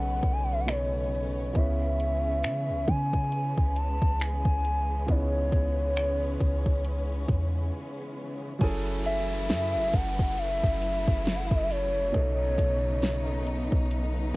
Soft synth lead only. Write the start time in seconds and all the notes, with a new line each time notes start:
Already playing: F#5
0.32 G#5
0.43 F#5
0.52 E5
0.60 F#5
0.68 C#5
1.56 E5
2.88 G#5
3.76 A5
4.21 G#5
5.09 C#5
9.06 E5
9.94 F#5
10.38 E5
11.35 F#5
11.46 E5
11.55 D#5
11.63 E5
11.70 C#5